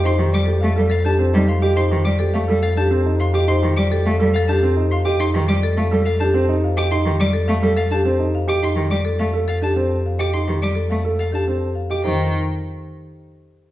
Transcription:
X:1
M:3/4
L:1/16
Q:1/4=105
K:Fmix
V:1 name="Violin"
c' z d' z3 f a z2 c' d' | c' z d' z3 f a z2 c' d' | c' z d' z3 f a z2 c' d' | c' z d' z3 f a z3 d' |
c' z d' z3 f a z3 d' | c' z d' z3 f a z3 d' | c' z d' z3 f a z3 d' | g2 z8 z2 |]
V:2 name="Marimba"
c z d A f z A G c z f e | c z d A f z A G c z f e | c z d A f z A G c z f e | z2 d A f z A G c z f e |
z2 d A f z A G c z f e | z2 d A f z A G c z f e | z2 d A f z A G c z f e | c2 z8 z2 |]
V:3 name="Grand piano"
E G z G z A z D C E z G | E G z G z A z D C E z G | E G z G z A z D C E z G | E G z3 A z D C E z G |
E G z3 A z D C E z G | E G z3 A z D C z2 G | E G z3 A z D C z2 G | E2 z8 z2 |]
V:4 name="Cello" clef=bass
z E, G, z A, G, z3 G, z2 | z E, G, z A, G, z6 | z E, G, z A, G, z6 | z E, G, z A, G, z6 |
z E, G, z A, G, z6 | z E, G, z A, z6 z | z E, G, z A, z6 z | E,2 z8 z2 |]
V:5 name="Double bass" clef=bass
F,,12- | F,,12- | F,,12- | F,,12- |
F,,12- | F,,12- | F,,12 | F,,2 z8 z2 |]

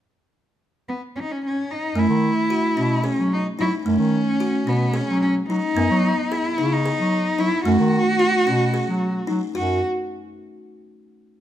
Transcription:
X:1
M:7/8
L:1/16
Q:1/4=110
K:F#dor
V:1 name="Cello"
z6 B,2 C/2 D/2 C C2 D2 | E8 C2 D2 E2 | C6 B,2 C2 C2 D2- | D4 E3 D4- D E2 |
F12 z2 | F2 z12 |]
V:2 name="Kalimba"
z12 z2 | A,4 F2 C2 G4 D2 | A,4 F2 C2 G4 D2 | B,4 G2 D2 G4 D2 |
A,4 F2 C2 G4 D2 | F2 z12 |]
V:3 name="Bass clarinet" clef=bass
z12 z2 | F,, D,2 z3 B,,3 F,3 F, z | F,, D,2 z3 B,,3 F,3 F, z | F,, F,2 z3 C,3 F,3 F, z |
F,, D,2 z3 B,,3 F,3 F, z | F,,2 z12 |]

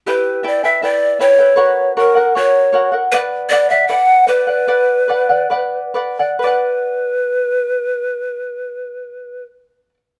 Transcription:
X:1
M:2/4
L:1/16
Q:1/4=74
K:Bm
V:1 name="Charango"
[EGBeg]2 [EBeg] [EBg] [EBeg]2 [EBeg] [EBg] | [F^ABcf]2 [FAcf] [FAf] [FAcf]2 [FAcf] [FAf] | [Bdf]2 [Bdf] [df] [Bdf]2 [Bdf] [df] | [Bdf]2 [Bdf] [df] [Bdf]2 [Bdf] [df] |
[Bdf]8- | [Bdf]8 |]
V:2 name="Pan flute"
B2 d e d2 c2- | c2 ^A2 c3 z | B2 d e f2 B2- | B6 z2 |
B8- | B8 |]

